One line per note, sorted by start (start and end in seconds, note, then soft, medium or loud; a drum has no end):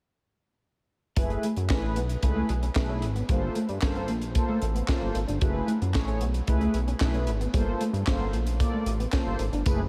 1.16 1.37 F#1 loud
1.16 1.25 F#3 medium
1.16 1.46 A3 medium
1.16 1.46 E4 medium
1.16 1.47 G#4 medium
1.16 1.47 B4 medium
1.16 kick loud
1.16 closed hi-hat loud
1.30 muted clean electric guitar stroke soft
1.30 closed hi-hat soft
1.43 1.52 A3 medium
1.43 closed hi-hat medium
1.57 1.71 F#2 medium
1.57 closed hi-hat soft
1.69 1.98 A1 loud
1.69 1.99 A3 medium
1.69 1.99 E4 medium
1.69 2.00 G#4 medium
1.69 2.00 B4 medium
1.69 muted clean electric guitar stroke soft
1.69 kick loud
1.69 snare loud
1.69 clap medium
1.83 1.92 C#4 medium
1.96 2.16 B1 medium
1.96 2.05 B3 medium
1.96 closed hi-hat medium
2.09 closed hi-hat medium
2.22 2.43 C#2 medium
2.22 2.52 A3 medium
2.22 2.52 E4 medium
2.22 2.53 G#4 medium
2.22 2.53 B4 loud
2.22 kick medium
2.22 closed hi-hat medium
2.36 2.45 A3 medium
2.49 2.70 B1 medium
2.49 muted clean electric guitar stroke soft
2.49 closed hi-hat medium
2.63 2.72 C#4 medium
2.63 closed hi-hat soft
2.75 3.04 B1 medium
2.75 3.05 A3 medium
2.75 3.05 E4 medium
2.75 3.05 G#4 medium
2.75 3.06 B4 medium
2.75 kick loud
2.75 snare loud
2.75 clap medium
2.90 2.98 C#4 medium
3.02 3.23 G#1 loud
3.02 muted clean electric guitar stroke soft
3.02 closed hi-hat medium
3.16 3.25 B3 medium
3.16 closed hi-hat soft
3.29 3.49 G1 loud
3.29 3.38 G3 medium
3.29 3.58 A#3 medium
3.29 3.59 F4 medium
3.29 3.59 A4 medium
3.29 3.59 C5 medium
3.29 kick loud
3.29 closed hi-hat medium
3.43 muted clean electric guitar stroke soft
3.55 3.64 A3 medium
3.55 closed hi-hat medium
3.69 3.79 G2 loud
3.69 closed hi-hat soft
3.82 4.10 G1 medium
3.82 4.12 A#3 medium
3.82 4.12 F4 medium
3.82 4.12 A4 medium
3.82 4.12 C5 loud
3.82 muted clean electric guitar stroke soft
3.82 kick loud
3.82 snare loud
3.82 clap medium
3.95 4.04 B3 medium
3.95 closed hi-hat soft
4.08 4.39 A#1 medium
4.08 4.17 A#3 medium
4.08 closed hi-hat medium
4.22 closed hi-hat medium
4.35 4.65 A#3 medium
4.35 4.65 F4 medium
4.35 4.65 A4 medium
4.35 4.65 C5 medium
4.35 kick medium
4.35 closed hi-hat medium
4.49 4.57 A3 medium
4.62 4.82 A1 medium
4.62 muted clean electric guitar stroke soft
4.62 closed hi-hat medium
4.75 4.84 B3 medium
4.75 closed hi-hat medium
4.88 5.18 A#3 medium
4.88 4.97 C#4 medium
4.88 5.18 F4 medium
4.88 5.18 A4 medium
4.88 5.18 C5 medium
4.88 kick loud
4.88 snare loud
4.88 clap medium
5.02 5.12 G1 medium
5.15 5.25 G#1 medium
5.15 muted clean electric guitar stroke soft
5.15 closed hi-hat medium
5.28 5.39 G1 medium
5.28 5.37 D4 medium
5.28 closed hi-hat soft
5.41 5.62 F#1 loud
5.41 5.50 F#3 medium
5.41 5.71 A3 medium
5.41 5.71 E4 medium
5.41 5.71 G#4 medium
5.41 5.71 B4 medium
5.41 kick loud
5.41 closed hi-hat medium
5.54 muted clean electric guitar stroke soft
5.67 5.76 A3 medium
5.67 closed hi-hat medium
5.82 5.97 F#2 medium
5.82 closed hi-hat soft
5.94 6.23 A1 medium
5.94 6.24 A3 medium
5.94 6.24 E4 medium
5.94 6.24 G#4 medium
5.94 6.24 C#5 medium
5.94 muted clean electric guitar stroke soft
5.94 kick loud
5.94 snare loud
5.94 clap medium
6.07 6.16 C#4 medium
6.07 closed hi-hat soft
6.21 6.41 B1 loud
6.21 6.30 B3 medium
6.21 closed hi-hat medium
6.34 closed hi-hat soft
6.47 6.68 C#2 loud
6.47 6.77 A3 medium
6.47 6.77 E4 medium
6.47 6.78 G#4 medium
6.47 6.78 B4 loud
6.47 kick loud
6.47 closed hi-hat medium
6.61 6.70 A3 medium
6.61 closed hi-hat soft
6.74 6.94 B1 medium
6.74 muted clean electric guitar stroke soft
6.74 closed hi-hat medium
6.88 6.96 C#4 medium
6.88 closed hi-hat soft
7.00 7.29 B1 medium
7.00 7.30 A3 medium
7.00 7.30 E4 medium
7.00 7.30 G#4 medium
7.00 7.31 B4 loud
7.00 kick loud
7.00 snare loud
7.00 clap medium
7.14 7.23 C#4 medium
7.14 closed hi-hat soft
7.27 7.47 G#1 medium
7.27 muted clean electric guitar stroke soft
7.27 closed hi-hat medium
7.41 7.50 B3 medium
7.41 closed hi-hat soft
7.53 7.74 G1 loud
7.53 7.63 G3 medium
7.53 7.83 A#3 medium
7.53 7.83 F4 medium
7.53 7.84 A4 medium
7.53 7.84 C5 loud
7.53 kick loud
7.53 closed hi-hat loud
7.67 muted clean electric guitar stroke soft
7.80 7.89 A3 medium
7.80 closed hi-hat medium
7.93 8.03 G2 medium
7.93 closed hi-hat soft
8.06 8.34 G1 medium
8.06 8.36 A#3 medium
8.06 8.37 F4 medium
8.06 8.37 A4 medium
8.06 8.37 C5 medium
8.06 muted clean electric guitar stroke soft
8.06 kick loud
8.06 snare loud
8.06 clap medium
8.20 8.29 B3 medium
8.33 8.63 A#1 medium
8.33 8.42 A#3 medium
8.33 closed hi-hat medium
8.47 closed hi-hat medium
8.59 8.89 A#3 medium
8.59 8.90 F4 medium
8.59 8.90 A4 medium
8.59 8.90 D5 loud
8.59 kick loud
8.59 closed hi-hat medium
8.74 8.82 A3 medium
8.86 9.06 A1 medium
8.86 muted clean electric guitar stroke soft
8.86 closed hi-hat medium
9.00 9.09 B3 medium
9.00 closed hi-hat soft
9.12 9.42 A#3 medium
9.12 9.22 C#4 medium
9.12 9.42 F4 medium
9.12 9.43 A4 medium
9.12 9.43 C5 loud
9.12 kick loud
9.12 snare loud
9.12 clap medium
9.26 9.36 G1 medium
9.39 9.50 G#1 medium
9.39 muted clean electric guitar stroke soft
9.39 closed hi-hat medium
9.53 9.63 G1 medium
9.53 9.62 D4 medium
9.53 closed hi-hat soft
9.65 9.86 F#1 loud
9.65 9.79 A3 medium
9.65 9.80 E4 medium
9.65 9.80 G#4 medium
9.65 9.80 B4 loud
9.65 kick loud
9.65 closed hi-hat medium
9.65 tambourine medium
9.80 muted clean electric guitar stroke soft